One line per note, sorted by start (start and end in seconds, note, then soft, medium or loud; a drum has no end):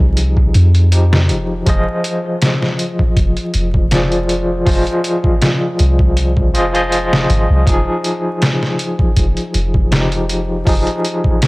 0.00 0.51 C2 medium
0.00 0.87 F3 medium
0.00 0.88 D#4 medium
0.00 0.89 G#4 medium
0.17 closed hi-hat medium
0.37 kick medium
0.54 1.32 F2 medium
0.54 closed hi-hat medium
0.75 closed hi-hat soft
0.92 1.62 F3 medium
0.92 1.63 D#4 medium
0.92 1.63 G4 medium
0.92 closed hi-hat medium
1.13 snare loud
1.29 1.63 F1 medium
1.29 closed hi-hat medium
1.66 1.85 F1 loud
1.66 3.87 F3 medium
1.66 3.88 F4 medium
1.66 3.88 G#4 medium
1.66 3.88 C5 medium
1.66 3.89 D#5 medium
1.66 kick loud
1.66 closed hi-hat medium
2.04 closed hi-hat medium
2.42 snare loud
2.42 closed hi-hat medium
2.62 snare soft
2.79 closed hi-hat medium
2.99 kick medium
3.17 3.35 F1 loud
3.17 kick loud
3.17 closed hi-hat medium
3.37 closed hi-hat soft
3.54 4.64 F1 loud
3.54 closed hi-hat medium
3.74 kick medium
3.91 4.62 F3 medium
3.91 4.62 F4 medium
3.91 4.62 G#4 medium
3.91 4.63 C5 medium
3.91 4.63 D5 medium
3.91 snare loud
3.91 closed hi-hat medium
4.12 closed hi-hat soft
4.29 closed hi-hat medium
4.65 4.84 F1 loud
4.65 6.50 F3 medium
4.65 6.50 F4 medium
4.65 6.51 G#4 medium
4.65 6.51 C5 medium
4.65 6.52 D#5 medium
4.65 kick loud
4.65 open hi-hat medium
4.87 closed hi-hat soft
5.04 closed hi-hat medium
5.24 kick medium
5.42 snare loud
5.42 closed hi-hat medium
5.79 6.56 C2 medium
5.79 closed hi-hat medium
5.99 kick medium
6.17 closed hi-hat medium
6.37 kick medium
6.53 7.26 F1 medium
6.53 6.69 F3 medium
6.53 6.69 F4 medium
6.53 6.70 G#4 medium
6.53 6.70 C5 medium
6.53 6.70 D#5 loud
6.53 closed hi-hat medium
6.72 7.61 F3 medium
6.72 7.62 F4 medium
6.72 7.62 G#4 medium
6.72 7.63 C5 medium
6.72 7.63 D#5 loud
6.72 closed hi-hat soft
6.92 closed hi-hat medium
7.13 snare loud
7.30 7.47 G#1 loud
7.30 closed hi-hat medium
7.50 7.65 C2 medium
7.65 7.85 F1 loud
7.65 9.87 F3 medium
7.65 9.88 D#4 medium
7.65 9.88 G#4 medium
7.65 kick loud
7.65 closed hi-hat medium
8.04 closed hi-hat medium
8.42 snare loud
8.42 closed hi-hat medium
8.63 snare soft
8.79 closed hi-hat medium
8.99 kick loud
9.16 9.34 F1 loud
9.16 kick loud
9.16 closed hi-hat medium
9.37 closed hi-hat soft
9.54 10.64 F1 medium
9.54 closed hi-hat medium
9.74 kick medium
9.91 10.62 F3 medium
9.91 10.63 D#4 medium
9.91 10.63 G4 medium
9.91 snare loud
9.91 closed hi-hat medium
10.12 closed hi-hat soft
10.29 closed hi-hat medium
10.65 10.85 F1 loud
10.65 11.47 F3 medium
10.65 11.47 D#4 medium
10.65 11.47 G#4 medium
10.65 kick loud
10.65 open hi-hat medium
10.87 closed hi-hat soft
11.05 closed hi-hat medium
11.24 kick medium
11.42 snare loud
11.42 closed hi-hat medium